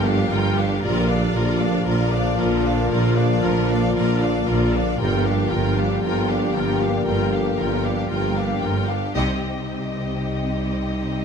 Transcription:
Already playing: G1 G2 D3 F3 A#3 G4
0.05 D4 G4 F5
0.30 G1 G2 F4 A#4 G5
0.57 D4 G4 F5
0.82 A#1 A#2 D3 F3 A#3 F4 A#4 D5
1.09 D4 D5 F5
1.34 A#1 A#2 F4 A#4 D5
1.60 D4 D5 F5
1.86 A#1 A#2 F4 A#4 D5
2.12 D4 D5 F5
2.38 A#1 A#2 F4 A#4 D5
2.65 D4 D5 F5
2.90 A#1 A#2 F4 A#4 D5
3.16 D4 D5 F5
3.42 A#1 A#2 F4 A#4 D5
3.68 D4 D5 F5
3.94 A#1 A#2 F4 A#4 D5
4.21 D4 D5 F5
4.46 A#1 A#2 F4 A#4 D5
4.73 D4 D5 F5
4.98 G1 G2 D3 F3 A#3 F4 G4 A#4 G5
5.24 D4 G4 F5
5.50 G1 G2 F4 A#4 G5
5.76 D4 G4 F5
6.02 G1 G2 F4 A#4 G5
6.29 D4 G4 F5
6.54 G1 G2 F4 A#4 G5
6.81 D4 G4 F5
7.05 G1 G2 F4 A#4 G5
7.33 D4 G4 F5
7.58 G1 G2 F4 A#4 G5
7.85 D4 G4 F5
8.10 G1 G2 F4 A#4 G5
8.36 D4 G4 F5
8.62 G1 G2 F4 A#4 G5
8.89 D4 G4 F5
9.14 C2 C3 G3 C4 D#4 G4 D#5

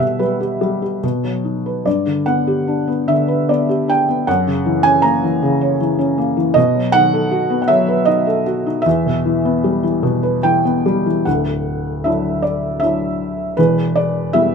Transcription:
Already playing: G3 G4 F#5
0.00 B2 E5
0.19 G3 B4
0.40 G4
0.61 G3
0.82 G4
1.03 B2
1.24 F#3
1.45 D#4
1.66 B4
1.86 G2 D5
2.06 D3
2.26 B3 F#5
2.47 G4
2.68 D4
2.88 B3
3.08 D3 E5
3.28 B4
3.49 B3 D5
3.69 G4
3.88 D4 G5
4.08 B3
4.27 F#2 F#5
4.47 C#3
4.66 E3
4.83 C#4 G#5
5.02 A#3 A#5
5.24 E3
5.42 C#3
5.61 C#5
5.80 E3
5.99 C#4
6.18 A#3
6.37 E3
6.54 B2 D#5
6.75 F#3
6.92 D#3 F#5
7.13 A4
7.31 F#4
7.50 B3
7.62 F#5
7.68 F#3 E5
7.88 B4
8.05 D#4 D#5
8.27 A4
8.46 F#4
8.66 D#4
8.82 E5
8.86 E2
9.06 B2
9.25 E3
9.45 B3
9.64 G3
9.83 E3
10.03 B2
10.23 B4
10.43 E3 G5
10.65 B3
10.86 G3
11.06 E3
11.25 D1 D2 F#5
12.04 F#3 D4 E4 E5
12.42 D5
12.80 F#3 D4 E4 E5
13.57 E1 E2 B4
13.96 D5
14.33 G3 B3 E4 E5

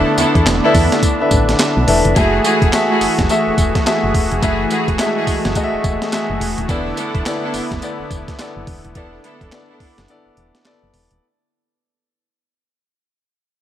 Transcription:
Already playing: D3 A3 B3 D4 E4 A4 B4 C#5 E5
0.18 E2 B3 D4 E4 A4, closed hi-hat, tambourine
0.35 E2, kick, closed hi-hat
0.46 E1, snare, clap, closed hi-hat, tambourine
0.64 B3 D4 E4 A4 B4 E5
0.75 E2, kick, open hi-hat, tambourine
0.92 snare, closed hi-hat
1.03 kick, closed hi-hat, tambourine
1.20 D4 E4 A4 B4 E5
1.31 A1, kick, closed hi-hat, tambourine
1.49 snare, closed hi-hat
1.59 snare, clap, closed hi-hat, tambourine
1.77 B1
1.87 E1 D4 E4 A4 B4 E5, open hi-hat
2.05 F1, closed hi-hat
2.16 F#1 E3 A3 E4 F#4 G#4 E5, kick, closed hi-hat, tambourine
2.44 A3 E4 F#4 G#4, closed hi-hat, tambourine
2.62 E1, kick, closed hi-hat
2.73 A3 F#4 G#4 E5, snare, clap, closed hi-hat, tambourine
2.90 A3 E4 F#4 G#4
3.01 F#1, open hi-hat, tambourine
3.19 F#1, kick, snare, closed hi-hat
3.29 A3 F#4 G#4 E5, closed hi-hat, tambourine
3.48 E1
3.58 E1, kick, closed hi-hat, tambourine
3.75 kick, snare, closed hi-hat
3.86 A3 F#4 G#4 E5, snare, clap, closed hi-hat, tambourine
4.04 F#1
4.14 E1, kick, open hi-hat
4.32 F1, closed hi-hat
4.42 F#1 A3 E4 F#4 G#4 E5, kick, closed hi-hat, tambourine
4.70 A3 E4 F#4 G#4, closed hi-hat, tambourine
4.88 E1, kick, closed hi-hat
4.99 G#3 F#4 G#4 E5, snare, clap, closed hi-hat, tambourine
5.06 A3
5.16 A3 E4 F#4 G#4
5.27 F#1, kick, open hi-hat, tambourine
5.45 F#1, snare, closed hi-hat
5.55 A3 F#4 G#4 D#5, kick, closed hi-hat, tambourine
5.63 E5
5.74 E1
5.84 E1, kick, closed hi-hat, tambourine
6.02 snare, closed hi-hat
6.12 A3 F#4 G#4 E5, snare, clap, closed hi-hat, tambourine
6.30 F#1
6.40 E1, open hi-hat
6.58 D#1, closed hi-hat
6.69 E1 D3 B3 D4 E4 A4 D5, kick, closed hi-hat, tambourine
6.97 B3 D4 E4 A4, closed hi-hat, tambourine
7.15 E1, kick, closed hi-hat
7.26 B3 E4 A4 D5, snare, clap, closed hi-hat, tambourine
7.43 B3 D4 E4 A4
7.54 F#1, open hi-hat, tambourine
7.72 F#1, kick, snare, closed hi-hat
7.82 B3 E4 A4 D5, closed hi-hat, tambourine
8.00 E1
8.11 E1, kick, closed hi-hat, tambourine
8.28 kick, snare, closed hi-hat
8.39 B3 E4 A4 D5, snare, clap, closed hi-hat, tambourine
8.57 F#1
8.67 E1, kick, open hi-hat
8.85 D#1, closed hi-hat
8.95 E1 B3 D4 E4 A4 D5, kick, closed hi-hat
9.24 B3 D4 E4 A4, closed hi-hat
9.41 E1, kick, closed hi-hat
9.52 B3 E4 A4 D5, snare, clap, closed hi-hat
9.70 B3 D4 E4 A4
9.80 F#1, kick, open hi-hat
9.98 F#1, snare, closed hi-hat
10.08 B3 E4 A4 D5, closed hi-hat
10.26 E1
10.37 E1, closed hi-hat
10.55 snare, closed hi-hat
10.65 B3 E4 A4 D5, snare, clap, closed hi-hat
10.83 F#1
10.94 E1, open hi-hat
11.11 D#1, closed hi-hat

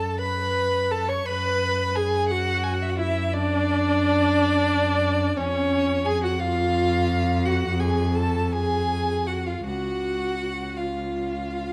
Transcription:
Already playing: F#2 A4 A5
0.18 B4 B5
0.91 A4 A5
1.08 C#5 C#6
1.26 F#2 B4 B5
1.95 G#4 G#5
2.29 F#4 F#5
2.63 G#5
2.74 F#5
2.82 E5
2.90 F#5
2.98 E4 E5
3.32 D4 D5
5.37 F2 C#4 C#5
6.05 G#4 G#5
6.22 F#4 F#5
6.39 F4 F5
7.45 F#4 F#5
7.80 G#4 G#5
8.15 A4 A5
8.52 G#4 G#5
9.26 F#4 F#5
9.45 F4 F5
9.64 C#2 F#4 F#5
10.76 F4 F5

